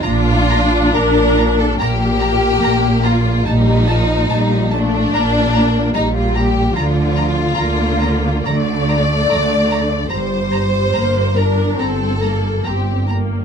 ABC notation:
X:1
M:4/4
L:1/16
Q:1/4=72
K:Bb
V:1 name="Violin section"
b2 b2 b2 b2 b2 b2 b2 b2 | a2 a2 a2 a2 b2 b2 b2 b2 | b2 b2 b2 b2 b2 b2 b2 b2 | b2 b2 b2 b2 b2 b2 b2 b2 |]
V:2 name="Violin section"
F4 B3 A G6 F2 | E6 D6 E F G2 | F8 d8 | c6 B2 A4 G2 z2 |]
V:3 name="Viola section"
D8 B,8 | G,2 F,2 G,2 A,2 B,4 G,4 | F,4 B,4 A,8 | G,4 B,2 D2 C2 B,2 C2 B,2 |]
V:4 name="Cello section" clef=bass
B,,4 B,,4 B,,4 B,,4 | B,,4 B,,4 B,,4 B,,4 | D,4 D,4 D,4 D,4 | G,,4 G,,4 G,,4 G,,4 |]
V:5 name="Double bass section" clef=bass
B,,,4 B,,,4 B,,,4 B,,,4 | B,,,4 B,,,4 B,,,4 B,,,4 | D,,4 D,,4 D,,4 D,,4 | G,,,4 G,,,4 G,,,4 G,,,4 |]